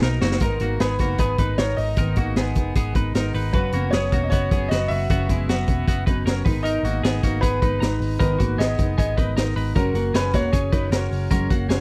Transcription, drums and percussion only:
0.02 snare loud
0.21 snare loud
0.31 snare medium
0.40 kick medium
0.40 closed hi-hat medium
0.60 closed hi-hat medium
0.80 snare loud
0.80 closed hi-hat medium
0.99 kick medium
0.99 snare soft
0.99 closed hi-hat medium
1.18 kick medium
1.18 closed hi-hat medium
1.38 kick medium
1.38 closed hi-hat medium
1.58 snare loud
1.58 closed hi-hat medium
1.78 open hi-hat medium
1.96 kick medium
1.96 closed hi-hat medium
2.16 kick medium
2.16 closed hi-hat medium
2.36 snare loud
2.36 closed hi-hat medium
2.55 kick medium
2.55 closed hi-hat medium
2.75 kick medium
2.75 closed hi-hat medium
2.95 kick medium
2.95 closed hi-hat medium
3.15 snare medium
3.15 closed hi-hat medium
3.34 open hi-hat medium
3.53 kick medium
3.53 closed hi-hat medium
3.72 closed hi-hat medium
3.92 snare loud
3.92 closed hi-hat medium
4.12 kick medium
4.12 closed hi-hat medium
4.31 kick medium
4.31 closed hi-hat loud
4.51 kick loud
4.51 closed hi-hat medium
4.71 snare loud
4.71 closed hi-hat medium
4.91 open hi-hat medium
5.10 kick medium
5.10 closed hi-hat medium
5.29 kick medium
5.29 closed hi-hat medium
5.49 snare loud
5.49 closed hi-hat medium
5.67 kick medium
5.67 closed hi-hat medium
5.88 kick medium
5.88 closed hi-hat medium
6.07 kick loud
6.07 closed hi-hat medium
6.27 snare medium
6.27 closed hi-hat medium
6.46 kick loud
6.46 open hi-hat medium
6.65 closed hi-hat medium
6.85 closed hi-hat medium
7.04 snare loud
7.04 closed hi-hat medium
7.23 kick medium
7.23 snare soft
7.23 closed hi-hat medium
7.43 kick medium
7.43 closed hi-hat medium
7.62 kick medium
7.62 closed hi-hat medium
7.82 snare loud
7.82 closed hi-hat medium
8.02 open hi-hat medium
8.20 kick medium
8.20 closed hi-hat medium
8.39 kick medium
8.39 closed hi-hat medium
8.60 snare loud
8.60 closed hi-hat medium
8.78 kick medium
8.78 closed hi-hat medium
8.98 kick medium
8.98 closed hi-hat medium
9.18 kick medium
9.18 closed hi-hat medium
9.37 snare loud
9.37 closed hi-hat medium
9.57 open hi-hat medium
9.76 kick medium
9.76 closed hi-hat medium
9.95 closed hi-hat medium
10.14 snare loud
10.14 closed hi-hat medium
10.33 kick medium
10.33 snare soft
10.33 closed hi-hat medium
10.53 kick medium
10.53 closed hi-hat medium
10.73 kick loud
10.73 closed hi-hat medium
10.92 snare loud
10.92 closed hi-hat medium
11.12 open hi-hat medium
11.31 kick medium
11.31 closed hi-hat medium
11.50 kick medium
11.50 closed hi-hat medium
11.70 snare loud
11.70 closed hi-hat medium

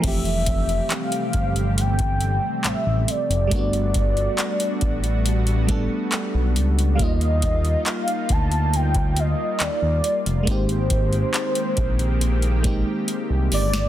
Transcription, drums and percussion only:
0.04 kick loud
0.04 closed hi-hat medium
0.04 crash medium
0.25 closed hi-hat soft
0.46 kick loud
0.46 closed hi-hat medium
0.69 closed hi-hat soft
0.90 clap loud
0.90 closed hi-hat medium
1.12 closed hi-hat medium
1.33 kick medium
1.33 closed hi-hat medium
1.56 closed hi-hat soft
1.78 closed hi-hat medium
1.99 kick medium
1.99 closed hi-hat soft
2.21 closed hi-hat medium
2.64 clap loud
2.64 closed hi-hat medium
3.08 closed hi-hat medium
3.31 closed hi-hat medium
3.51 kick loud
3.51 closed hi-hat medium
3.73 closed hi-hat soft
3.94 kick medium
3.94 closed hi-hat medium
4.17 closed hi-hat soft
4.38 clap loud
4.38 closed hi-hat medium
4.60 closed hi-hat medium
4.81 kick medium
4.81 closed hi-hat medium
5.04 closed hi-hat medium
5.26 closed hi-hat medium
5.47 closed hi-hat soft
5.69 kick medium
5.69 closed hi-hat medium
6.12 clap loud
6.12 closed hi-hat medium
6.56 closed hi-hat medium
6.79 closed hi-hat medium
6.99 kick loud
6.99 closed hi-hat medium
7.21 closed hi-hat soft
7.42 kick loud
7.42 closed hi-hat medium
7.65 closed hi-hat soft
7.86 clap loud
7.86 closed hi-hat medium
8.08 closed hi-hat medium
8.29 kick medium
8.29 closed hi-hat medium
8.52 closed hi-hat medium
8.74 closed hi-hat medium
8.95 kick medium
8.95 closed hi-hat soft
9.16 closed hi-hat medium
9.60 clap loud
9.60 closed hi-hat medium
10.04 closed hi-hat medium
10.26 closed hi-hat medium
10.47 kick loud
10.47 closed hi-hat medium
10.69 closed hi-hat soft
10.90 kick medium
10.90 closed hi-hat medium
11.13 closed hi-hat soft
11.34 clap loud
11.34 closed hi-hat medium
11.55 closed hi-hat medium
11.77 kick medium
11.77 closed hi-hat medium
11.99 closed hi-hat medium
12.21 closed hi-hat medium
12.42 closed hi-hat soft
12.64 kick loud
12.64 closed hi-hat medium
13.08 closed hi-hat medium
13.52 closed hi-hat soft
13.52 open hi-hat medium
13.73 snare medium
13.73 closed hi-hat medium

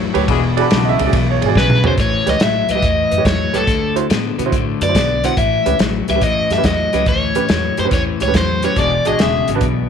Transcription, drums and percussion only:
0.15 ride medium
0.28 kick loud
0.28 ride medium
0.57 ride medium
0.70 snare loud
0.70 ride medium
0.99 ride medium
1.13 kick loud
1.13 snare soft
1.13 ride loud
1.42 ride medium
1.55 kick medium
1.55 snare medium
1.70 mid tom medium
1.84 floor tom loud
1.98 kick loud
1.98 snare soft
1.98 closed hi-hat medium
2.27 snare soft
2.27 closed hi-hat medium
2.40 snare loud
2.40 closed hi-hat medium
2.69 closed hi-hat medium
2.82 kick loud
2.82 closed hi-hat medium
3.11 closed hi-hat medium
3.25 kick medium
3.25 snare loud
3.25 closed hi-hat medium
3.54 closed hi-hat medium
3.67 kick loud
3.67 snare soft
3.67 closed hi-hat medium
3.96 closed hi-hat medium
4.10 snare loud
4.10 closed hi-hat medium
4.39 closed hi-hat medium
4.52 kick loud
4.52 closed hi-hat medium
4.81 closed hi-hat medium
4.95 kick medium
4.95 snare loud
4.95 closed hi-hat loud
5.24 closed hi-hat medium
5.37 kick loud
5.37 closed hi-hat medium
5.66 closed hi-hat medium
5.79 snare loud
5.79 closed hi-hat medium
6.08 closed hi-hat medium
6.21 kick loud
6.21 closed hi-hat medium
6.50 snare soft
6.50 closed hi-hat soft
6.64 kick medium
6.64 snare loud
6.64 closed hi-hat medium
6.93 closed hi-hat medium
7.06 kick loud
7.06 snare soft
7.06 closed hi-hat medium
7.35 closed hi-hat medium
7.49 snare loud
7.49 closed hi-hat medium
7.77 closed hi-hat medium
7.91 kick loud
7.91 snare soft
7.91 closed hi-hat medium
8.20 closed hi-hat medium
8.34 kick medium
8.34 snare loud
8.34 closed hi-hat medium
8.62 closed hi-hat medium
8.76 kick medium
8.76 snare soft
8.76 closed hi-hat medium
9.05 closed hi-hat medium
9.19 snare loud
9.19 closed hi-hat medium
9.48 closed hi-hat medium
9.61 kick loud
9.61 closed hi-hat medium

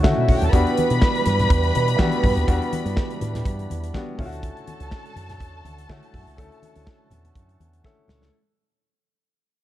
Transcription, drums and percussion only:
0.04 kick loud
0.04 snare loud
0.04 high conga medium
0.29 kick medium
0.29 open hi-hat medium
0.29 muted conga soft
0.29 low conga medium
0.42 closed hi-hat soft
0.53 kick loud
0.53 closed hi-hat medium
0.67 closed hi-hat soft
0.77 closed hi-hat medium
0.77 muted conga soft
0.77 high conga medium
0.90 closed hi-hat soft
1.02 kick loud
1.02 snare loud
1.02 muted conga soft
1.15 closed hi-hat soft
1.26 closed hi-hat medium
1.26 high conga medium
1.39 closed hi-hat soft
1.39 low conga medium
1.50 kick loud
1.50 closed hi-hat medium
1.64 closed hi-hat soft
1.75 closed hi-hat medium
1.75 high conga medium
1.88 closed hi-hat medium
1.99 kick loud
1.99 snare loud
1.99 muted conga soft
1.99 high conga medium
2.12 closed hi-hat soft
2.24 kick loud
2.24 open hi-hat medium
2.24 muted conga soft
2.24 low conga medium
2.37 closed hi-hat soft
2.48 kick loud
2.48 closed hi-hat medium
2.62 closed hi-hat soft
2.73 closed hi-hat medium
2.73 muted conga soft
2.73 high conga medium
2.86 closed hi-hat soft
2.97 kick loud
2.97 snare loud
2.97 muted conga soft
3.10 closed hi-hat soft
3.21 closed hi-hat medium
3.21 muted conga soft
3.21 high conga medium
3.35 snare soft
3.35 closed hi-hat soft
3.35 low conga medium
3.45 kick loud
3.45 closed hi-hat medium
3.45 muted conga soft
3.59 closed hi-hat soft
3.70 closed hi-hat medium
3.70 muted conga soft
3.70 high conga medium
3.84 closed hi-hat medium
3.94 kick loud
3.94 snare loud
3.94 high conga medium
4.19 kick loud
4.19 open hi-hat medium
4.19 muted conga soft
4.19 low conga medium
4.32 closed hi-hat soft
4.43 kick loud
4.43 closed hi-hat medium
4.43 muted conga soft
4.57 closed hi-hat soft
4.67 closed hi-hat medium
4.67 muted conga soft
4.67 high conga medium
4.80 closed hi-hat soft
4.91 kick loud
4.91 snare loud
5.06 closed hi-hat soft
5.16 closed hi-hat medium
5.16 high conga medium
5.29 snare soft
5.29 closed hi-hat soft
5.29 low conga medium
5.40 kick loud
5.40 closed hi-hat medium
5.65 closed hi-hat medium
5.65 muted conga soft
5.65 high conga medium
5.78 closed hi-hat medium
5.89 kick loud
5.89 snare loud
5.89 high conga medium
6.03 closed hi-hat soft
6.14 kick loud
6.14 open hi-hat medium
6.14 low conga medium
6.27 closed hi-hat soft
6.37 kick loud
6.37 closed hi-hat medium
6.37 muted conga soft
6.52 closed hi-hat soft
6.62 closed hi-hat medium
6.62 muted conga soft
6.62 high conga medium
6.76 closed hi-hat soft
6.87 kick loud
6.87 snare loud
7.11 closed hi-hat medium
7.11 high conga medium
7.11 low conga medium
7.24 closed hi-hat soft
7.24 low conga medium
7.35 kick loud
7.35 closed hi-hat medium
7.35 muted conga soft
7.49 closed hi-hat soft
7.60 closed hi-hat medium
7.60 muted conga soft
7.60 high conga medium
7.73 closed hi-hat medium
7.84 kick loud
7.84 snare medium
7.84 muted conga soft
7.84 high conga medium
8.08 snare loud
8.08 muted conga soft
8.08 low conga medium
8.22 snare medium

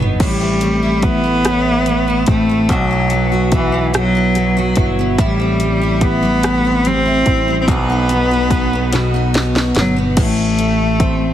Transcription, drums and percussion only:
0.20 kick loud
0.20 crash medium
0.61 closed hi-hat soft
1.02 kick medium
1.02 closed hi-hat medium
1.45 cross-stick loud
1.45 closed hi-hat medium
1.86 closed hi-hat soft
2.26 kick medium
2.26 closed hi-hat medium
2.69 kick loud
2.69 closed hi-hat medium
3.10 closed hi-hat soft
3.52 kick medium
3.52 closed hi-hat medium
3.94 cross-stick loud
3.94 closed hi-hat medium
4.35 cross-stick soft
4.35 closed hi-hat medium
4.76 kick medium
4.76 closed hi-hat medium
5.18 kick loud
5.18 closed hi-hat medium
5.60 closed hi-hat soft
6.01 kick medium
6.01 closed hi-hat medium
6.43 cross-stick medium
6.43 closed hi-hat medium
6.85 closed hi-hat soft
7.26 kick medium
7.26 closed hi-hat medium
7.68 kick loud
7.68 closed hi-hat medium
8.09 closed hi-hat soft
8.51 kick medium
8.51 closed hi-hat medium
8.93 snare medium
8.93 closed hi-hat medium
9.34 snare medium
9.34 closed hi-hat medium
9.56 snare medium
9.75 snare medium
9.75 closed hi-hat medium
10.17 kick loud
10.17 closed hi-hat medium
10.17 crash medium
10.59 closed hi-hat soft
11.00 kick medium
11.00 closed hi-hat medium

